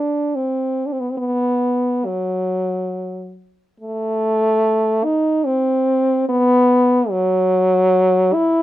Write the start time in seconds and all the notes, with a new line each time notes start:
Already playing: D4
0.35 C4
0.86 D4
0.93 C4
1.00 B3
1.10 C4
1.17 B3
2.06 F#3
3.80 A3
5.04 D#4
5.46 C4
6.29 B3
7.10 F#3
8.33 E4